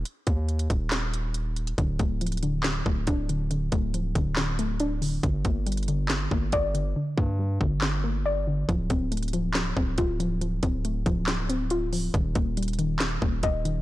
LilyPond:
<<
  \new Staff \with { instrumentName = "Synth pluck" } { \clef bass \time 4/4 \key d \phrygian \tempo 4 = 139 r1 | d8 a8 f8 d8 d8 a8 d'8 d8 | d8 a8 f8 d8 d8 a8 d'8 d8 | d8 bes8 g8 d8 d8 bes8 d''8 d8 |
d8 bes8 g8 d8 d8 bes8 d''8 d8 | f8 c'8 a8 f8 f8 c'8 f'8 f8 | f8 c'8 a8 f8 f8 c'8 f'8 f8 | ees8 bes8 g8 ees8 ees8 bes8 ees''8 ees8 | }
  \new Staff \with { instrumentName = "808-style bass" } { \clef bass \time 4/4 \key d \phrygian r8 ees,4 ees,,2~ ees,,8 | d,,8 d,,2 d,,8 d,,4~ | d,,8 d,,4 d,,2~ d,,8 | g,,8 g,,2 g,,8 g,,4 |
r8 g,4 g,,2~ g,,8 | d,,8 d,,2 d,,8 d,,4~ | d,,8 d,,4 d,,2~ d,,8 | ees,,8 ees,,2 ees,,8 ees,,4 | }
  \new DrumStaff \with { instrumentName = "Drums" } \drummode { \time 4/4 hh8 <hh bd>8 hh16 hh16 <hh bd>8 <hc hh sn>8 hh8 hh8 hh16 hh16 | <hh bd>8 <hh bd>8 hh32 hh32 hh32 hh32 hh8 <hc hh sn>8 bd8 <hh bd>8 hh8 | hh8 <hh bd>8 hh8 <hh bd>8 <hc hh sn>8 hh8 hh8 hho8 | <hh bd>8 <hh bd>8 hh32 hh32 hh32 hh32 hh8 <hc hh sn>8 bd8 <hh bd>8 hh8 |
r8 bd8 r8 bd8 <hc sn>4 r4 | <hh bd>8 <hh bd>8 hh32 hh32 hh32 hh32 hh8 <hc hh sn>8 bd8 <hh bd>8 hh8 | hh8 <hh bd>8 hh8 <hh bd>8 <hc hh sn>8 hh8 hh8 hho8 | <hh bd>8 <hh bd>8 hh32 hh32 hh32 hh32 hh8 <hc hh sn>8 bd8 <hh bd>8 hh8 | }
>>